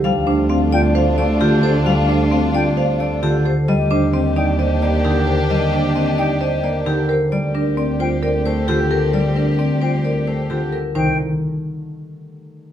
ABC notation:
X:1
M:4/4
L:1/8
Q:1/4=132
K:Cdor
V:1 name="Flute"
z3 g z4 | z3 g z4 | z3 g z4 | z3 g z4 |
z3 g z4 | z3 g z4 | g z6 z |]
V:2 name="Vibraphone"
f c f d f d G c | f c f d f d G c | e c e d e d G c | e c e d e d G c |
d B d c d c G B | d B d c d c G B | c z6 z |]
V:3 name="Marimba"
z D C F c z F A | z D C F c z F A | z D C E c z E B | z D C E c z E B |
z D C F B z F A | z D C F B z F A | E z6 z |]
V:4 name="Violin section"
[DF]8- | [DF]6- [DF] z | [DG]8- | [DG]6- [DG] z |
[CG]8- | [CG]6- [CG] z | z8 |]
V:5 name="Harp" clef=bass
[F,G,]4- [F,G,] A, D,2 | G,4- G, A, D,2 | G,4- G, B, D,2 | G,4- G, B, D,2 |
G,4- G, A, D,2 | G,4- G, A, D,2 | E, z6 z |]
V:6 name="Double bass section" clef=bass
D,,8- | D,,8 | E,,8- | E,,8 |
D,,8- | D,,8 | C,, z6 z |]